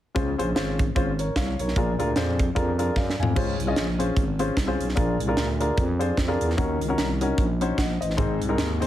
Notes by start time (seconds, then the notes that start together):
0.15 C#2 C#3 C#4 F4 G#4 C5, kick, closed hi-hat
0.38 A#1 C#4 F4 G#4 C5, closed hi-hat
0.55 G#1 C#4 F4 G#4 C5, snare, closed hi-hat
0.79 kick, closed hi-hat
0.95 G#1 C#4 F4 G#4 C5, kick, closed hi-hat
1.19 A#4 C#5, closed hi-hat
1.36 C2 C#5 F5, kick, snare, closed hi-hat
1.59 B1 A#4 C#5, closed hi-hat
1.68 snare
1.76 A#1 A#2 D4 F4 G#4 A#4, kick, closed hi-hat
1.99 D2 D4 F4 G#4 A#4, closed hi-hat
2.16 F2 D4 F4 G#4 C5, snare, closed hi-hat
2.39 kick, closed hi-hat
2.55 F2 D4 F4 G#4 A#4, kick, closed hi-hat
2.78 D4 F4 G#4 A#4, closed hi-hat
2.96 F#2 D5 F5, kick, snare
3.10 snare
3.19 F2 F5 G#5, floor tom
3.35 C#2 C#3 C#4 F4 G#4 C5, kick, crash
3.60 C2, closed hi-hat
3.67 C#4 F4 G#4 D#5
3.76 A#1, snare, closed hi-hat
3.99 C#4 F4 G#4 C5, closed hi-hat
4.17 G#1, kick, closed hi-hat
4.39 C#4 F4 G#4 C5, closed hi-hat
4.57 C2, kick, snare, closed hi-hat
4.67 C#4 F4 G#4 C5
4.80 B1, closed hi-hat
4.89 snare
4.95 A#1 A#2 D4 F4 G#4 A#4, kick, closed hi-hat
5.20 C2, closed hi-hat
5.27 D4 F4 G#4 A#4
5.37 D2, snare, closed hi-hat
5.60 D4 F4 G#4 A#4, closed hi-hat
5.78 F2, kick, closed hi-hat
5.99 D4 F4 G#4 C5, closed hi-hat
6.17 F2, kick, snare, closed hi-hat
6.28 D4 F4 G#4 A#4
6.41 E2, closed hi-hat
6.50 snare
6.57 D#2 D#3 C#4 D#4 F#4 A#4, kick, closed hi-hat
6.81 C#2, closed hi-hat
6.88 C#4 D#4 F#4 A#4
6.98 C2, snare, closed hi-hat
7.21 C#4 D#4 F#4 A#4, closed hi-hat
7.38 A#1, kick, closed hi-hat
7.61 C#4 D#4 F#4 C5, closed hi-hat
7.78 A#1 D#5 F#5, kick, snare, closed hi-hat
8.01 A1 C5 D#5, closed hi-hat
8.10 snare
8.17 G#1 G#2 C4 D#4 G#4 C5, kick, closed hi-hat
8.42 C2, closed hi-hat
8.49 C4 D#4 G#4 A#4
8.58 D#2, snare, closed hi-hat
8.80 C4 D#4 G#4 C5, closed hi-hat